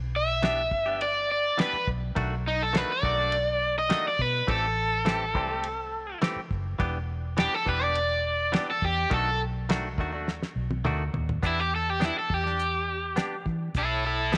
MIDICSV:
0, 0, Header, 1, 6, 480
1, 0, Start_track
1, 0, Key_signature, 1, "minor"
1, 0, Tempo, 579151
1, 1794, Time_signature, 4, 2, 24, 8
1, 11915, End_track
2, 0, Start_track
2, 0, Title_t, "Overdriven electric guitar"
2, 0, Program_c, 0, 29
2, 135, Note_on_c, 0, 76, 101
2, 823, Note_off_c, 0, 76, 0
2, 847, Note_on_c, 0, 74, 87
2, 1073, Note_off_c, 0, 74, 0
2, 1090, Note_on_c, 0, 74, 84
2, 1314, Note_off_c, 0, 74, 0
2, 1327, Note_on_c, 0, 71, 94
2, 1553, Note_off_c, 0, 71, 0
2, 2052, Note_on_c, 0, 63, 97
2, 2162, Note_off_c, 0, 63, 0
2, 2176, Note_on_c, 0, 69, 78
2, 2296, Note_off_c, 0, 69, 0
2, 2296, Note_on_c, 0, 71, 96
2, 2404, Note_off_c, 0, 71, 0
2, 2421, Note_on_c, 0, 74, 96
2, 3107, Note_off_c, 0, 74, 0
2, 3137, Note_on_c, 0, 75, 83
2, 3360, Note_off_c, 0, 75, 0
2, 3381, Note_on_c, 0, 74, 89
2, 3493, Note_off_c, 0, 74, 0
2, 3493, Note_on_c, 0, 71, 92
2, 3716, Note_off_c, 0, 71, 0
2, 3732, Note_on_c, 0, 69, 105
2, 5129, Note_off_c, 0, 69, 0
2, 6130, Note_on_c, 0, 67, 105
2, 6251, Note_off_c, 0, 67, 0
2, 6251, Note_on_c, 0, 69, 94
2, 6357, Note_off_c, 0, 69, 0
2, 6371, Note_on_c, 0, 71, 92
2, 6491, Note_off_c, 0, 71, 0
2, 6491, Note_on_c, 0, 74, 104
2, 7182, Note_off_c, 0, 74, 0
2, 7215, Note_on_c, 0, 69, 94
2, 7319, Note_off_c, 0, 69, 0
2, 7332, Note_on_c, 0, 67, 89
2, 7556, Note_off_c, 0, 67, 0
2, 7575, Note_on_c, 0, 69, 95
2, 7797, Note_off_c, 0, 69, 0
2, 9502, Note_on_c, 0, 64, 91
2, 9612, Note_off_c, 0, 64, 0
2, 9612, Note_on_c, 0, 67, 76
2, 9719, Note_off_c, 0, 67, 0
2, 9743, Note_on_c, 0, 69, 75
2, 9861, Note_off_c, 0, 69, 0
2, 9861, Note_on_c, 0, 67, 76
2, 9986, Note_off_c, 0, 67, 0
2, 9986, Note_on_c, 0, 64, 83
2, 10090, Note_off_c, 0, 64, 0
2, 10099, Note_on_c, 0, 69, 71
2, 10227, Note_off_c, 0, 69, 0
2, 10227, Note_on_c, 0, 67, 88
2, 11144, Note_off_c, 0, 67, 0
2, 11419, Note_on_c, 0, 64, 80
2, 11425, Note_on_c, 0, 69, 93
2, 11644, Note_off_c, 0, 69, 0
2, 11645, Note_off_c, 0, 64, 0
2, 11655, Note_on_c, 0, 64, 69
2, 11660, Note_on_c, 0, 69, 72
2, 11870, Note_off_c, 0, 64, 0
2, 11880, Note_off_c, 0, 69, 0
2, 11915, End_track
3, 0, Start_track
3, 0, Title_t, "Clean electric guitar"
3, 0, Program_c, 1, 27
3, 352, Note_on_c, 1, 52, 75
3, 357, Note_on_c, 1, 59, 73
3, 364, Note_on_c, 1, 62, 84
3, 368, Note_on_c, 1, 67, 81
3, 499, Note_off_c, 1, 52, 0
3, 501, Note_off_c, 1, 59, 0
3, 504, Note_off_c, 1, 62, 0
3, 507, Note_off_c, 1, 67, 0
3, 711, Note_on_c, 1, 67, 52
3, 725, Note_on_c, 1, 62, 47
3, 736, Note_on_c, 1, 59, 39
3, 855, Note_off_c, 1, 67, 0
3, 862, Note_off_c, 1, 62, 0
3, 868, Note_off_c, 1, 59, 0
3, 1306, Note_on_c, 1, 52, 67
3, 1312, Note_on_c, 1, 59, 85
3, 1315, Note_on_c, 1, 62, 76
3, 1321, Note_on_c, 1, 67, 78
3, 1456, Note_off_c, 1, 52, 0
3, 1459, Note_off_c, 1, 59, 0
3, 1460, Note_off_c, 1, 62, 0
3, 1463, Note_off_c, 1, 67, 0
3, 1785, Note_on_c, 1, 51, 71
3, 1792, Note_on_c, 1, 57, 87
3, 1798, Note_on_c, 1, 62, 85
3, 1802, Note_on_c, 1, 66, 88
3, 1935, Note_off_c, 1, 51, 0
3, 1939, Note_off_c, 1, 57, 0
3, 1942, Note_off_c, 1, 62, 0
3, 1944, Note_off_c, 1, 66, 0
3, 2264, Note_on_c, 1, 51, 85
3, 2272, Note_on_c, 1, 57, 79
3, 2277, Note_on_c, 1, 62, 90
3, 2281, Note_on_c, 1, 66, 80
3, 2415, Note_off_c, 1, 51, 0
3, 2419, Note_off_c, 1, 57, 0
3, 2421, Note_off_c, 1, 62, 0
3, 2423, Note_off_c, 1, 66, 0
3, 2503, Note_on_c, 1, 51, 52
3, 2512, Note_on_c, 1, 57, 52
3, 2521, Note_on_c, 1, 62, 55
3, 2527, Note_on_c, 1, 66, 61
3, 2621, Note_off_c, 1, 66, 0
3, 2631, Note_off_c, 1, 51, 0
3, 2631, Note_on_c, 1, 66, 47
3, 2635, Note_off_c, 1, 57, 0
3, 2635, Note_off_c, 1, 62, 0
3, 2645, Note_on_c, 1, 62, 45
3, 2655, Note_on_c, 1, 57, 45
3, 2775, Note_off_c, 1, 66, 0
3, 2782, Note_off_c, 1, 62, 0
3, 2787, Note_off_c, 1, 57, 0
3, 3228, Note_on_c, 1, 51, 82
3, 3236, Note_on_c, 1, 57, 85
3, 3241, Note_on_c, 1, 62, 79
3, 3244, Note_on_c, 1, 66, 81
3, 3377, Note_off_c, 1, 51, 0
3, 3381, Note_off_c, 1, 57, 0
3, 3383, Note_off_c, 1, 62, 0
3, 3385, Note_off_c, 1, 66, 0
3, 3708, Note_on_c, 1, 52, 66
3, 3714, Note_on_c, 1, 57, 77
3, 3722, Note_on_c, 1, 60, 82
3, 3727, Note_on_c, 1, 67, 74
3, 3857, Note_off_c, 1, 52, 0
3, 3860, Note_off_c, 1, 57, 0
3, 3864, Note_off_c, 1, 60, 0
3, 3866, Note_off_c, 1, 67, 0
3, 4186, Note_on_c, 1, 52, 74
3, 4193, Note_on_c, 1, 57, 75
3, 4198, Note_on_c, 1, 60, 83
3, 4204, Note_on_c, 1, 67, 86
3, 4336, Note_off_c, 1, 52, 0
3, 4339, Note_off_c, 1, 57, 0
3, 4342, Note_off_c, 1, 60, 0
3, 4345, Note_off_c, 1, 67, 0
3, 4425, Note_on_c, 1, 52, 54
3, 4433, Note_on_c, 1, 57, 66
3, 4440, Note_on_c, 1, 60, 64
3, 4449, Note_on_c, 1, 67, 67
3, 4538, Note_off_c, 1, 67, 0
3, 4548, Note_on_c, 1, 67, 58
3, 4552, Note_off_c, 1, 52, 0
3, 4553, Note_off_c, 1, 60, 0
3, 4556, Note_off_c, 1, 57, 0
3, 4563, Note_on_c, 1, 60, 53
3, 4572, Note_on_c, 1, 57, 44
3, 4694, Note_off_c, 1, 67, 0
3, 4701, Note_off_c, 1, 60, 0
3, 4706, Note_off_c, 1, 57, 0
3, 5152, Note_on_c, 1, 52, 93
3, 5157, Note_on_c, 1, 57, 93
3, 5163, Note_on_c, 1, 60, 89
3, 5168, Note_on_c, 1, 67, 105
3, 5299, Note_off_c, 1, 52, 0
3, 5301, Note_off_c, 1, 57, 0
3, 5304, Note_off_c, 1, 60, 0
3, 5307, Note_off_c, 1, 67, 0
3, 5625, Note_on_c, 1, 52, 72
3, 5634, Note_on_c, 1, 59, 92
3, 5638, Note_on_c, 1, 62, 81
3, 5640, Note_on_c, 1, 67, 93
3, 5775, Note_off_c, 1, 52, 0
3, 5779, Note_off_c, 1, 59, 0
3, 5781, Note_off_c, 1, 62, 0
3, 5783, Note_off_c, 1, 67, 0
3, 6106, Note_on_c, 1, 52, 75
3, 6116, Note_on_c, 1, 59, 79
3, 6119, Note_on_c, 1, 62, 81
3, 6124, Note_on_c, 1, 67, 78
3, 6256, Note_off_c, 1, 52, 0
3, 6260, Note_off_c, 1, 59, 0
3, 6262, Note_off_c, 1, 62, 0
3, 6264, Note_off_c, 1, 67, 0
3, 6343, Note_on_c, 1, 52, 55
3, 6353, Note_on_c, 1, 59, 57
3, 6359, Note_on_c, 1, 62, 52
3, 6366, Note_on_c, 1, 67, 65
3, 6457, Note_off_c, 1, 67, 0
3, 6467, Note_on_c, 1, 67, 47
3, 6471, Note_off_c, 1, 52, 0
3, 6471, Note_off_c, 1, 62, 0
3, 6476, Note_off_c, 1, 59, 0
3, 6481, Note_on_c, 1, 62, 51
3, 6491, Note_on_c, 1, 59, 40
3, 6613, Note_off_c, 1, 67, 0
3, 6620, Note_off_c, 1, 62, 0
3, 6625, Note_off_c, 1, 59, 0
3, 7063, Note_on_c, 1, 52, 75
3, 7069, Note_on_c, 1, 59, 88
3, 7072, Note_on_c, 1, 62, 80
3, 7076, Note_on_c, 1, 67, 86
3, 7214, Note_off_c, 1, 52, 0
3, 7217, Note_off_c, 1, 59, 0
3, 7219, Note_off_c, 1, 62, 0
3, 7221, Note_off_c, 1, 67, 0
3, 7543, Note_on_c, 1, 51, 80
3, 7551, Note_on_c, 1, 57, 74
3, 7555, Note_on_c, 1, 62, 82
3, 7561, Note_on_c, 1, 66, 82
3, 7694, Note_off_c, 1, 51, 0
3, 7698, Note_off_c, 1, 57, 0
3, 7700, Note_off_c, 1, 62, 0
3, 7703, Note_off_c, 1, 66, 0
3, 8033, Note_on_c, 1, 51, 86
3, 8040, Note_on_c, 1, 57, 85
3, 8045, Note_on_c, 1, 62, 102
3, 8047, Note_on_c, 1, 66, 102
3, 8179, Note_off_c, 1, 51, 0
3, 8183, Note_off_c, 1, 57, 0
3, 8185, Note_off_c, 1, 62, 0
3, 8186, Note_off_c, 1, 66, 0
3, 8271, Note_on_c, 1, 51, 66
3, 8280, Note_on_c, 1, 57, 56
3, 8288, Note_on_c, 1, 62, 70
3, 8294, Note_on_c, 1, 66, 73
3, 8382, Note_off_c, 1, 66, 0
3, 8392, Note_on_c, 1, 66, 55
3, 8393, Note_off_c, 1, 62, 0
3, 8395, Note_off_c, 1, 51, 0
3, 8399, Note_off_c, 1, 57, 0
3, 8403, Note_on_c, 1, 62, 55
3, 8413, Note_on_c, 1, 57, 51
3, 8536, Note_off_c, 1, 66, 0
3, 8541, Note_off_c, 1, 62, 0
3, 8546, Note_off_c, 1, 57, 0
3, 8990, Note_on_c, 1, 51, 88
3, 8995, Note_on_c, 1, 57, 103
3, 9001, Note_on_c, 1, 62, 100
3, 9006, Note_on_c, 1, 66, 106
3, 9138, Note_off_c, 1, 51, 0
3, 9141, Note_off_c, 1, 57, 0
3, 9143, Note_off_c, 1, 62, 0
3, 9146, Note_off_c, 1, 66, 0
3, 9470, Note_on_c, 1, 59, 67
3, 9479, Note_on_c, 1, 62, 74
3, 9486, Note_on_c, 1, 67, 62
3, 9618, Note_off_c, 1, 59, 0
3, 9623, Note_off_c, 1, 62, 0
3, 9626, Note_off_c, 1, 67, 0
3, 9946, Note_on_c, 1, 59, 70
3, 9953, Note_on_c, 1, 62, 84
3, 9960, Note_on_c, 1, 67, 79
3, 10096, Note_off_c, 1, 59, 0
3, 10100, Note_off_c, 1, 62, 0
3, 10104, Note_off_c, 1, 67, 0
3, 10310, Note_on_c, 1, 67, 45
3, 10334, Note_on_c, 1, 62, 40
3, 10456, Note_off_c, 1, 67, 0
3, 10468, Note_off_c, 1, 62, 0
3, 10908, Note_on_c, 1, 59, 83
3, 10917, Note_on_c, 1, 62, 88
3, 10925, Note_on_c, 1, 67, 98
3, 11058, Note_off_c, 1, 59, 0
3, 11062, Note_off_c, 1, 62, 0
3, 11067, Note_off_c, 1, 67, 0
3, 11870, Note_on_c, 1, 59, 72
3, 11879, Note_on_c, 1, 62, 73
3, 11886, Note_on_c, 1, 67, 73
3, 11915, Note_off_c, 1, 59, 0
3, 11915, Note_off_c, 1, 62, 0
3, 11915, Note_off_c, 1, 67, 0
3, 11915, End_track
4, 0, Start_track
4, 0, Title_t, "Fingered electric bass"
4, 0, Program_c, 2, 33
4, 0, Note_on_c, 2, 35, 104
4, 589, Note_off_c, 2, 35, 0
4, 589, Note_on_c, 2, 31, 74
4, 1239, Note_off_c, 2, 31, 0
4, 1554, Note_on_c, 2, 35, 83
4, 1738, Note_off_c, 2, 35, 0
4, 1790, Note_on_c, 2, 35, 98
4, 2345, Note_off_c, 2, 35, 0
4, 2513, Note_on_c, 2, 35, 84
4, 3251, Note_off_c, 2, 35, 0
4, 3473, Note_on_c, 2, 47, 82
4, 3658, Note_off_c, 2, 47, 0
4, 3713, Note_on_c, 2, 33, 99
4, 4429, Note_off_c, 2, 33, 0
4, 4429, Note_on_c, 2, 36, 83
4, 5078, Note_off_c, 2, 36, 0
4, 5391, Note_on_c, 2, 30, 84
4, 5576, Note_off_c, 2, 30, 0
4, 5632, Note_on_c, 2, 28, 99
4, 6186, Note_off_c, 2, 28, 0
4, 6349, Note_on_c, 2, 28, 90
4, 7088, Note_off_c, 2, 28, 0
4, 7311, Note_on_c, 2, 40, 81
4, 7496, Note_off_c, 2, 40, 0
4, 7553, Note_on_c, 2, 35, 106
4, 8270, Note_off_c, 2, 35, 0
4, 8270, Note_on_c, 2, 39, 83
4, 8640, Note_off_c, 2, 39, 0
4, 8750, Note_on_c, 2, 35, 75
4, 8968, Note_off_c, 2, 35, 0
4, 8989, Note_on_c, 2, 38, 89
4, 9207, Note_off_c, 2, 38, 0
4, 9229, Note_on_c, 2, 39, 80
4, 9447, Note_off_c, 2, 39, 0
4, 9474, Note_on_c, 2, 40, 97
4, 10028, Note_off_c, 2, 40, 0
4, 10194, Note_on_c, 2, 40, 74
4, 10933, Note_off_c, 2, 40, 0
4, 11151, Note_on_c, 2, 52, 79
4, 11338, Note_off_c, 2, 52, 0
4, 11393, Note_on_c, 2, 35, 97
4, 11915, Note_off_c, 2, 35, 0
4, 11915, End_track
5, 0, Start_track
5, 0, Title_t, "Muted fingered electric bass strokes"
5, 1434, Note_on_c, 9, 29, 33
5, 1517, Note_off_c, 9, 29, 0
5, 5272, Note_on_c, 9, 29, 34
5, 5355, Note_off_c, 9, 29, 0
5, 11915, End_track
6, 0, Start_track
6, 0, Title_t, "Drums"
6, 353, Note_on_c, 9, 53, 55
6, 361, Note_on_c, 9, 38, 104
6, 436, Note_off_c, 9, 53, 0
6, 444, Note_off_c, 9, 38, 0
6, 591, Note_on_c, 9, 36, 87
6, 674, Note_off_c, 9, 36, 0
6, 836, Note_on_c, 9, 53, 57
6, 919, Note_off_c, 9, 53, 0
6, 1315, Note_on_c, 9, 53, 59
6, 1324, Note_on_c, 9, 38, 112
6, 1398, Note_off_c, 9, 53, 0
6, 1406, Note_off_c, 9, 38, 0
6, 1553, Note_on_c, 9, 36, 89
6, 1636, Note_off_c, 9, 36, 0
6, 1793, Note_on_c, 9, 36, 106
6, 1793, Note_on_c, 9, 53, 57
6, 1876, Note_off_c, 9, 36, 0
6, 1876, Note_off_c, 9, 53, 0
6, 2275, Note_on_c, 9, 53, 66
6, 2283, Note_on_c, 9, 38, 111
6, 2358, Note_off_c, 9, 53, 0
6, 2366, Note_off_c, 9, 38, 0
6, 2513, Note_on_c, 9, 36, 88
6, 2595, Note_off_c, 9, 36, 0
6, 2752, Note_on_c, 9, 53, 59
6, 2834, Note_off_c, 9, 53, 0
6, 3231, Note_on_c, 9, 53, 66
6, 3240, Note_on_c, 9, 38, 103
6, 3314, Note_off_c, 9, 53, 0
6, 3322, Note_off_c, 9, 38, 0
6, 3474, Note_on_c, 9, 36, 81
6, 3557, Note_off_c, 9, 36, 0
6, 3714, Note_on_c, 9, 36, 111
6, 3715, Note_on_c, 9, 53, 61
6, 3797, Note_off_c, 9, 36, 0
6, 3798, Note_off_c, 9, 53, 0
6, 4193, Note_on_c, 9, 53, 57
6, 4202, Note_on_c, 9, 38, 109
6, 4276, Note_off_c, 9, 53, 0
6, 4284, Note_off_c, 9, 38, 0
6, 4432, Note_on_c, 9, 36, 86
6, 4515, Note_off_c, 9, 36, 0
6, 4670, Note_on_c, 9, 53, 58
6, 4753, Note_off_c, 9, 53, 0
6, 5153, Note_on_c, 9, 53, 58
6, 5161, Note_on_c, 9, 38, 113
6, 5235, Note_off_c, 9, 53, 0
6, 5244, Note_off_c, 9, 38, 0
6, 5393, Note_on_c, 9, 36, 77
6, 5475, Note_off_c, 9, 36, 0
6, 5633, Note_on_c, 9, 36, 110
6, 5633, Note_on_c, 9, 53, 53
6, 5716, Note_off_c, 9, 36, 0
6, 5716, Note_off_c, 9, 53, 0
6, 6112, Note_on_c, 9, 53, 66
6, 6120, Note_on_c, 9, 38, 115
6, 6195, Note_off_c, 9, 53, 0
6, 6203, Note_off_c, 9, 38, 0
6, 6352, Note_on_c, 9, 36, 94
6, 6435, Note_off_c, 9, 36, 0
6, 6592, Note_on_c, 9, 53, 60
6, 6674, Note_off_c, 9, 53, 0
6, 7074, Note_on_c, 9, 53, 66
6, 7082, Note_on_c, 9, 38, 113
6, 7156, Note_off_c, 9, 53, 0
6, 7165, Note_off_c, 9, 38, 0
6, 7311, Note_on_c, 9, 36, 84
6, 7394, Note_off_c, 9, 36, 0
6, 7550, Note_on_c, 9, 53, 64
6, 7552, Note_on_c, 9, 36, 102
6, 7633, Note_off_c, 9, 53, 0
6, 7634, Note_off_c, 9, 36, 0
6, 8035, Note_on_c, 9, 53, 68
6, 8043, Note_on_c, 9, 38, 115
6, 8118, Note_off_c, 9, 53, 0
6, 8126, Note_off_c, 9, 38, 0
6, 8272, Note_on_c, 9, 36, 91
6, 8355, Note_off_c, 9, 36, 0
6, 8520, Note_on_c, 9, 38, 64
6, 8602, Note_off_c, 9, 38, 0
6, 8641, Note_on_c, 9, 38, 60
6, 8724, Note_off_c, 9, 38, 0
6, 8873, Note_on_c, 9, 48, 66
6, 8956, Note_off_c, 9, 48, 0
6, 8991, Note_on_c, 9, 47, 87
6, 9074, Note_off_c, 9, 47, 0
6, 9233, Note_on_c, 9, 43, 97
6, 9316, Note_off_c, 9, 43, 0
6, 9358, Note_on_c, 9, 43, 99
6, 9441, Note_off_c, 9, 43, 0
6, 9474, Note_on_c, 9, 36, 97
6, 9474, Note_on_c, 9, 42, 59
6, 9557, Note_off_c, 9, 36, 0
6, 9557, Note_off_c, 9, 42, 0
6, 9955, Note_on_c, 9, 42, 66
6, 9963, Note_on_c, 9, 38, 97
6, 10038, Note_off_c, 9, 42, 0
6, 10046, Note_off_c, 9, 38, 0
6, 10194, Note_on_c, 9, 36, 88
6, 10277, Note_off_c, 9, 36, 0
6, 10326, Note_on_c, 9, 38, 31
6, 10409, Note_off_c, 9, 38, 0
6, 10438, Note_on_c, 9, 42, 65
6, 10521, Note_off_c, 9, 42, 0
6, 10912, Note_on_c, 9, 42, 58
6, 10920, Note_on_c, 9, 38, 103
6, 10995, Note_off_c, 9, 42, 0
6, 11003, Note_off_c, 9, 38, 0
6, 11154, Note_on_c, 9, 36, 80
6, 11237, Note_off_c, 9, 36, 0
6, 11393, Note_on_c, 9, 42, 57
6, 11394, Note_on_c, 9, 36, 92
6, 11476, Note_off_c, 9, 42, 0
6, 11477, Note_off_c, 9, 36, 0
6, 11873, Note_on_c, 9, 42, 55
6, 11882, Note_on_c, 9, 38, 112
6, 11915, Note_off_c, 9, 38, 0
6, 11915, Note_off_c, 9, 42, 0
6, 11915, End_track
0, 0, End_of_file